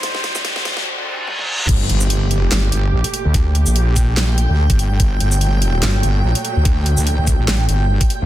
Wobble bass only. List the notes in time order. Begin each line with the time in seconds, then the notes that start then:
1.69 G1
1.90 G1
2.33 F#1
2.52 G1
2.72 G1
2.93 A#1
3.25 D2
3.66 A#1
4.49 D2
4.70 G1
5.00 G1
5.21 G1
5.83 G1
6.03 G1
6.24 A#1
6.56 D2
6.97 D2
7.18 D2
7.39 A1
7.48 A1
7.69 G1
8.22 D2